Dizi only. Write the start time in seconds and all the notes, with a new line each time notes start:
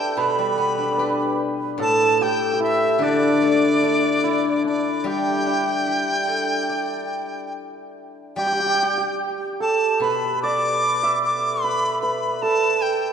Already playing: G5
0.19 B5
1.82 A5
2.23 G5
2.63 E5
3.03 D5
4.67 D5
5.07 G5
8.36 G5
9.61 A5
10.02 B5
10.42 D6
11.24 D6
11.63 B5
12.02 B5
12.34 B5
12.42 A5
12.82 G5